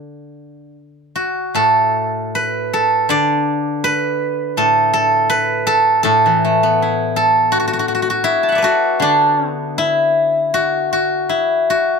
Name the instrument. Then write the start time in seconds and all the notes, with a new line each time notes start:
guzheng
Already playing: D3 D5
1.16 F#4
1.55 A2 A4
2.35 B4
2.73 A4
3.09 D3 D5
3.84 B4
4.57 A2 A4
4.93 A4
5.30 B4
5.67 A4
6.03 A2 A4
6.26 E3
6.45 A3
6.63 B3
6.82 E4
7.16 A4
7.52 F#4
7.60 F#4
7.68 F#4
7.73 F#4
7.79 F#4
7.88 F#4
7.95 F#4
8.02 F#4
8.10 F#4
8.24 E4
8.43 A5
8.49 E5 F#5
8.55 B4 D5
8.62 F#4 A4
9.00 D3 D4
9.50 B3
9.78 E4
10.54 F#4
10.93 F#4
11.29 E4
11.70 F#4